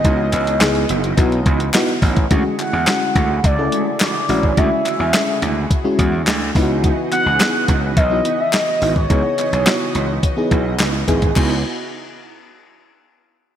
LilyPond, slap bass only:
\new Staff \with { instrumentName = "Slap bass" } { \clef bass \time 4/4 \key cis \minor \tempo 4 = 106 cis,8 cis,8 cis,8 fis,,8 b,,8 cis,8 r8 a,,8 | d,16 r8 e,16 r8 d,8 cis,8 r4 a,,8 | d,16 r8 e,16 r8 d,8 r8 e,8 d,8 cis,8~ | cis,16 r8 cis,16 r8 cis,8 b,,8 r4 gis,,8 |
cis,16 r8 b,,16 r8 cis,8 r8 b,,8 cis,8 gis,,8 | cis,8 r2. r8 | }